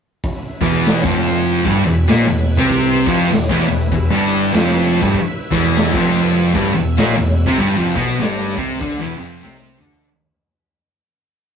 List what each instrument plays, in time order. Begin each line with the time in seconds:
0.23 string machine E4 B4 E5, kick, open hi-hat
0.61 fingered electric bass E1, distorted electric guitar E2 E3, kick
0.85 snare, open hi-hat
1.04 fingered electric bass F1, distorted electric guitar F2 F3, kick
1.46 open hi-hat
1.65 fingered electric bass G1, distorted electric guitar G2 G3, kick
1.84 fingered electric bass E1, distorted electric guitar E2
2.07 fingered electric bass A#1, distorted electric guitar A#2 A#3, snare, open hi-hat
2.27 fingered electric bass E1, distorted electric guitar E2
2.57 fingered electric bass C2, distorted electric guitar C3 C4, kick
2.69 kick, open hi-hat
3.07 fingered electric bass F1, distorted electric guitar F2 F3, kick
3.31 fingered electric bass E1, distorted electric guitar E2, snare, open hi-hat
3.49 fingered electric bass E1, distorted electric guitar E2 E3, kick
3.68 fingered electric bass E1, distorted electric guitar E2, snare
3.92 fingered electric bass E1, distorted electric guitar E2, kick, open hi-hat
4.10 fingered electric bass G1, distorted electric guitar G2 G3
4.53 fingered electric bass F1, distorted electric guitar F2 F3, snare, open hi-hat
5.01 fingered electric bass G1, distorted electric guitar G2 G3, kick, snare
5.14 kick, open hi-hat
5.51 fingered electric bass E1, distorted electric guitar E2 E3, kick
5.75 snare, open hi-hat
5.93 fingered electric bass F1, distorted electric guitar F2 F3, kick
6.15 snare
6.36 open hi-hat
6.54 fingered electric bass G1, distorted electric guitar G2 G3, kick
6.73 fingered electric bass E1, distorted electric guitar E2
6.97 fingered electric bass A#1, distorted electric guitar A#2 A#3, snare, open hi-hat
7.16 fingered electric bass E1, distorted electric guitar E2
7.46 fingered electric bass C2, distorted electric guitar C3 C4, kick
7.58 fingered electric bass G1, distorted electric guitar G2 G3, kick, open hi-hat
7.77 fingered electric bass F1, distorted electric guitar F2 F3
7.95 fingered electric bass B1, distorted electric guitar B2 B3, kick
8.19 fingered electric bass G1, distorted electric guitar G2 G3, snare, open hi-hat
8.56 fingered electric bass C2, distorted electric guitar C3 C4, kick
8.80 fingered electric bass D2, distorted electric guitar D3 D4, kick, open hi-hat
8.98 fingered electric bass E1, distorted electric guitar E2 E3
9.17 distorted electric guitar F2 F3
9.41 fingered electric bass C2, distorted electric guitar C3 C4
9.45 snare
9.62 high tom
9.79 fingered electric bass D2, distorted electric guitar D3 D4, mid tom
9.93 floor tom